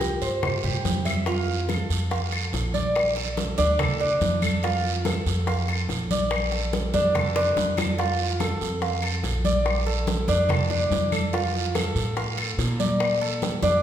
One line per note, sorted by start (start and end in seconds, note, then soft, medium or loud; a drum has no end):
0.00 0.16 C2 medium
0.00 0.21 G4 medium
0.00 0.24 A#4 medium
0.00 high bongo medium
0.00 high conga medium
0.00 short guiro medium
0.21 0.61 G2 medium
0.21 0.63 C5 medium
0.21 1.03 C5 medium
0.21 high bongo soft
0.21 short guiro medium
0.43 high bongo medium
0.43 high conga soft
0.43 low conga medium
0.43 long guiro medium
0.43 claves medium
0.63 0.83 G2 medium
0.63 1.05 G4 medium
0.63 high conga soft
0.63 low conga medium
0.84 1.84 F2 medium
0.84 high bongo soft
0.84 low bongo medium
0.84 high conga medium
0.84 short guiro medium
1.05 1.26 E5 medium
1.05 high bongo soft
1.05 high conga medium
1.05 short guiro medium
1.05 claves medium
1.26 1.68 F4 medium
1.26 high bongo medium
1.26 long guiro medium
1.48 high bongo soft
1.48 high conga soft
1.69 2.10 A4 medium
1.69 high bongo medium
1.69 high conga medium
1.69 short guiro medium
1.69 claves medium
1.90 2.49 F2 medium
1.90 high bongo soft
1.90 high conga soft
1.90 short guiro medium
2.11 2.32 F5 medium
2.11 high bongo medium
2.11 high conga soft
2.11 long guiro medium
2.32 2.73 A4 medium
2.32 high bongo soft
2.32 high conga soft
2.32 claves medium
2.52 3.52 A#1 medium
2.52 high bongo soft
2.52 low bongo medium
2.52 high conga soft
2.52 short guiro medium
2.74 3.15 D5 medium
2.74 high conga medium
2.74 short guiro medium
2.95 high bongo medium
2.95 high conga soft
2.95 long guiro medium
2.95 claves medium
3.16 3.57 A4 medium
3.16 high bongo soft
3.16 high conga soft
3.37 high bongo medium
3.37 high conga medium
3.37 short guiro medium
3.58 4.17 D2 medium
3.58 3.78 D4 medium
3.58 high bongo soft
3.58 high conga medium
3.58 short guiro medium
3.79 4.00 A4 medium
3.79 high bongo medium
3.79 high conga soft
3.79 low conga medium
3.79 long guiro medium
3.79 claves medium
4.00 4.41 D4 medium
4.00 high bongo soft
4.00 high conga soft
4.20 5.20 F2 medium
4.20 high bongo soft
4.20 low bongo medium
4.20 high conga medium
4.20 short guiro medium
4.42 4.63 A4 medium
4.42 high conga medium
4.42 short guiro medium
4.42 claves medium
4.63 5.04 F4 medium
4.63 high bongo medium
4.63 high conga soft
4.63 long guiro medium
4.84 high bongo soft
4.84 high conga soft
5.05 5.46 A4 medium
5.05 high bongo medium
5.05 high conga medium
5.05 short guiro medium
5.05 claves medium
5.26 5.85 F2 medium
5.26 high bongo soft
5.26 high conga soft
5.26 short guiro medium
5.47 5.68 F5 medium
5.47 high bongo medium
5.47 high conga soft
5.47 long guiro medium
5.68 6.09 A4 medium
5.68 high bongo soft
5.68 high conga soft
5.68 claves medium
5.89 6.88 A#1 medium
5.89 high bongo soft
5.89 low bongo medium
5.89 high conga soft
5.89 short guiro medium
6.11 6.51 D5 medium
6.11 high conga medium
6.11 short guiro medium
6.31 high bongo medium
6.31 high conga soft
6.31 long guiro medium
6.31 claves medium
6.52 6.93 A4 medium
6.52 high bongo soft
6.52 high conga soft
6.73 high bongo medium
6.73 high conga medium
6.73 short guiro medium
6.94 7.53 F2 medium
6.94 7.14 D4 medium
6.94 high bongo soft
6.94 high conga medium
6.94 short guiro medium
7.15 7.35 A4 medium
7.15 high bongo medium
7.15 high conga soft
7.15 low conga medium
7.15 long guiro medium
7.15 claves medium
7.36 7.76 D4 medium
7.36 high bongo medium
7.36 high conga soft
7.56 8.55 F2 medium
7.56 high bongo medium
7.56 high conga medium
7.56 short guiro medium
7.77 7.98 A4 medium
7.77 low bongo loud
7.77 high conga medium
7.77 short guiro medium
7.77 claves medium
7.98 8.39 F4 medium
7.98 high bongo medium
7.98 long guiro medium
8.19 high bongo soft
8.19 high conga soft
8.40 8.81 A4 medium
8.40 high bongo medium
8.40 high conga medium
8.40 short guiro medium
8.40 claves medium
8.61 9.20 F2 medium
8.61 high bongo soft
8.61 short guiro medium
8.82 9.02 F5 medium
8.82 high bongo medium
8.82 high conga soft
8.82 long guiro medium
9.02 9.43 A4 medium
9.02 high bongo soft
9.02 high conga soft
9.02 claves medium
9.23 10.22 A#1 medium
9.23 high bongo soft
9.23 low bongo medium
9.23 high conga soft
9.23 short guiro medium
9.45 9.85 D5 medium
9.45 high conga medium
9.45 short guiro medium
9.65 high bongo medium
9.65 high conga soft
9.65 long guiro medium
9.65 claves medium
9.86 10.27 A4 medium
9.86 high bongo soft
9.86 high conga soft
10.07 high bongo medium
10.07 high conga medium
10.07 short guiro medium
10.28 10.87 F2 medium
10.28 10.49 D4 medium
10.28 high bongo soft
10.28 high conga medium
10.28 short guiro medium
10.49 10.70 A4 medium
10.49 high bongo medium
10.49 high conga soft
10.49 low conga medium
10.49 long guiro medium
10.49 claves medium
10.70 11.11 D4 medium
10.70 high bongo soft
10.70 high conga soft
10.70 low conga medium
10.90 11.89 F2 medium
10.90 high bongo soft
10.90 low bongo medium
10.90 high conga medium
10.90 short guiro medium
11.12 11.32 A4 medium
11.12 high conga medium
11.12 short guiro medium
11.12 claves medium
11.33 11.74 F4 medium
11.33 high bongo medium
11.33 high conga soft
11.33 long guiro medium
11.55 high bongo soft
11.55 high conga soft
11.75 12.16 A4 medium
11.75 high bongo medium
11.75 high conga medium
11.75 short guiro medium
11.75 claves medium
11.95 12.54 A2 medium
11.95 high bongo soft
11.95 high conga soft
11.95 short guiro medium
12.17 12.37 F5 medium
12.17 high bongo medium
12.17 high conga soft
12.17 long guiro medium
12.38 12.78 A4 medium
12.38 high bongo soft
12.38 high conga soft
12.38 claves medium
12.58 13.56 A#2 medium
12.58 high bongo soft
12.58 low bongo medium
12.58 high conga soft
12.58 short guiro medium
12.80 13.20 D5 medium
12.80 high conga medium
12.80 short guiro medium
13.00 high bongo medium
13.00 high conga soft
13.00 long guiro medium
13.00 claves medium
13.21 13.62 A4 medium
13.21 high bongo soft
13.21 high conga soft
13.42 high bongo medium
13.42 high conga medium
13.42 short guiro medium
13.62 13.82 F2 medium
13.62 13.82 D4 medium
13.62 high bongo soft
13.62 high conga loud
13.62 short guiro medium